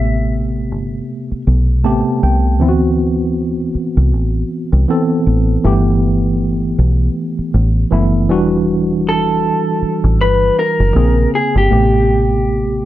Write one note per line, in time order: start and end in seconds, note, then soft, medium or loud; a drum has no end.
0.00 0.71 A1 medium
0.00 0.81 C3 medium
0.00 0.81 A3 medium
0.00 0.82 B3 medium
0.00 0.82 G4 medium
0.00 1.42 E5 medium
0.71 1.01 G1 medium
1.32 muted fingered electric bass stroke soft
1.47 1.85 B1 medium
1.83 2.02 A1 medium
1.83 2.47 C3 medium
1.83 2.48 A3 medium
1.83 2.48 B3 medium
1.83 2.49 G4 medium
1.83 2.19 A5 medium
2.23 2.60 C2 medium
2.23 2.58 G5 medium
2.60 3.70 D2 medium
2.60 3.85 E3 medium
2.60 3.85 B3 medium
2.60 3.85 C4 medium
2.60 2.68 E4 medium
2.69 3.89 F#4 medium
3.75 muted fingered electric bass stroke soft
3.97 4.13 C2 medium
4.13 4.43 A1 medium
4.73 4.85 C2 medium
4.88 5.52 E3 medium
4.88 5.52 B3 medium
4.88 5.53 C4 medium
4.88 5.53 A4 medium
5.27 5.56 A1 medium
5.64 6.74 G1 loud
5.64 6.89 E3 medium
5.64 6.89 A3 medium
5.64 6.90 B3 medium
5.64 6.90 G4 medium
6.79 7.08 B1 medium
7.39 muted fingered electric bass stroke soft
7.54 7.84 A1 medium
7.91 8.30 F#1 medium
7.91 8.28 E3 medium
7.91 8.29 A3 medium
7.91 8.30 B3 medium
7.91 8.30 E4 medium
8.29 9.50 E1 medium
8.29 9.54 E3 medium
8.29 9.54 G3 medium
8.29 9.55 D4 medium
8.29 9.55 F#4 medium
9.09 10.21 A4 medium
9.82 muted fingered electric bass stroke soft
10.04 10.20 A1 medium
10.20 10.50 G1 medium
10.20 10.59 B4 loud
10.59 11.30 A#4 loud
10.80 10.92 F#1 medium
10.94 11.26 A#1 medium
10.94 11.58 C#3 medium
10.94 11.59 A#3 medium
10.94 11.59 C4 medium
10.94 11.60 G#4 medium
11.35 11.57 G#4 medium
11.56 11.68 G1 medium
11.56 12.85 G4 medium
11.70 12.81 A1 loud
11.70 12.85 C3 medium
11.70 12.85 A3 medium
11.70 12.85 B3 medium
11.70 12.85 G4 medium